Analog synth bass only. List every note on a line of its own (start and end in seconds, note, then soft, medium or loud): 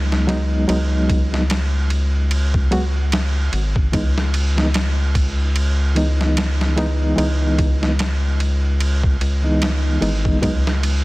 0.00 0.66 C#2 medium
0.69 2.68 C#2 loud
2.72 3.50 C#2 medium
3.53 3.89 G#1 medium
3.93 7.14 C#2 loud
7.18 9.17 C#2 loud
9.21 9.99 C#2 medium
10.02 10.38 G#1 medium
10.43 11.04 C#2 medium